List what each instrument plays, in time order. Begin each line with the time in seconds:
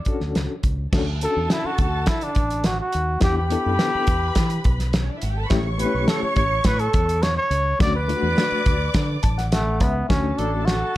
Already playing: trumpet D5
0.05 reed electric piano C#4 D4 F#4 A4, muted fingered electric bass stroke, kick, closed hi-hat
0.20 fingered electric bass D2, snare
0.35 fingered electric bass C#2, snare, closed hi-hat
0.63 fingered electric bass C#2, kick, closed hi-hat
0.92 fingered electric bass D2, reed electric piano C#4 D4 F#4 A4, violin section A4 A5, kick, snare, crash
1.21 reed electric piano C#4 D4 F#4 A4, trumpet A4, closed hi-hat
1.37 fingered electric bass E2
1.50 trumpet E4, snare, closed hi-hat
1.64 trumpet F#4, muted fingered electric bass stroke
1.78 fingered electric bass D2, trumpet F#4, kick, closed hi-hat
2.06 fingered electric bass D3, trumpet E4, kick, snare, closed hi-hat
2.21 trumpet D4, closed hi-hat
2.35 fingered electric bass A1, kick, closed hi-hat
2.50 closed hi-hat
2.64 trumpet F#4, snare, closed hi-hat
2.80 trumpet F#4
2.92 fingered electric bass D#2, closed hi-hat
3.20 fingered electric bass E2, reed electric piano B3 D4 E4 G4, trumpet G4, violin section B4 B5, kick, snare, closed hi-hat
3.37 trumpet G4
3.50 reed electric piano B3 D4 E4 A4, closed hi-hat
3.66 fingered electric bass F#2
3.79 snare, closed hi-hat
3.95 muted fingered electric bass stroke
4.07 fingered electric bass E2, kick, closed hi-hat
4.35 fingered electric bass E3, kick, snare, closed hi-hat
4.50 closed hi-hat
4.64 fingered electric bass B1, kick, closed hi-hat
4.79 snare, closed hi-hat
4.93 snare, closed hi-hat
5.01 violin section C#4 C#5
5.09 violin section D4 D5
5.17 violin section E4 E5
5.21 fingered electric bass G#1, violin section F#4 F#5, closed hi-hat
5.31 violin section G4 G5
5.37 violin section A4 A5
5.45 violin section B4 B5
5.50 fingered electric bass A1, reed electric piano A3 C#4 E4 G4, violin section C#5 C#6, kick, snare, closed hi-hat
5.78 reed electric piano A3 B3 E4 G4, trumpet B4, closed hi-hat
5.86 reed electric piano C#4
5.94 fingered electric bass B1
6.08 trumpet A4, snare, closed hi-hat
6.23 trumpet C#5, muted fingered electric bass stroke
6.36 fingered electric bass A1, trumpet C#5, kick, closed hi-hat
6.64 fingered electric bass A2, trumpet B4, kick, snare, closed hi-hat
6.79 trumpet A4, closed hi-hat
6.93 fingered electric bass E2, kick, closed hi-hat
7.09 closed hi-hat
7.23 trumpet C#5, snare, closed hi-hat
7.37 trumpet C#5
7.50 fingered electric bass C#2, closed hi-hat
7.79 fingered electric bass D2, reed electric piano A3 C#4 D4 F#4, violin section D5 D6, trumpet D5, kick, snare, closed hi-hat
7.96 trumpet B4
8.08 reed electric piano A3 D4 F4, closed hi-hat
8.16 reed electric piano F#4
8.23 fingered electric bass E2
8.38 snare, closed hi-hat
8.52 muted fingered electric bass stroke
8.66 fingered electric bass D2, kick, closed hi-hat
8.94 fingered electric bass D3, kick, snare, closed hi-hat
9.23 fingered electric bass A1, reed electric piano A5, kick, closed hi-hat
9.38 reed electric piano F#5, snare, closed hi-hat
9.52 trumpet A3, reed electric piano F#5, snare, closed hi-hat
9.80 fingered electric bass C#2, trumpet B3, reed electric piano E5, kick, closed hi-hat
10.09 fingered electric bass D2, reed electric piano A3 C#4 D4 F#4, trumpet C#4, violin section A4 A5, kick, snare, closed hi-hat
10.38 fingered electric bass A1, saxophone section F#3 D4 A4, trumpet D4, closed hi-hat
10.66 trumpet F#4, snare, closed hi-hat